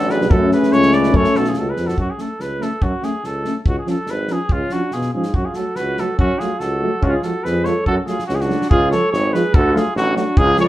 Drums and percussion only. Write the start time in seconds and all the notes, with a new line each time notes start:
0.10 snare
0.21 snare
0.31 kick
0.52 snare
0.63 snare
0.72 snare
0.82 snare
0.92 snare
1.03 snare
1.14 kick
1.24 snare
1.35 snare
1.45 snare
1.54 snare
1.77 snare
1.88 snare
1.98 kick
2.18 snare
2.40 snare
2.62 snare
2.82 kick
3.03 snare
3.24 snare
3.45 snare
3.66 kick
3.87 snare
4.07 snare
4.28 snare
4.49 kick
4.70 snare
4.91 snare
5.02 snare
5.23 snare
5.34 kick
5.54 snare
5.76 snare
5.98 snare
6.19 kick
6.40 snare
6.60 snare
7.03 kick
7.23 snare
7.45 snare
7.65 snare
7.86 kick
8.07 snare
8.19 snare
8.29 snare
8.41 snare
8.50 snare
8.62 snare
8.71 kick
8.92 snare
9.14 snare
9.35 snare
9.54 kick
9.76 snare
9.97 snare
10.17 snare
10.37 kick
10.57 snare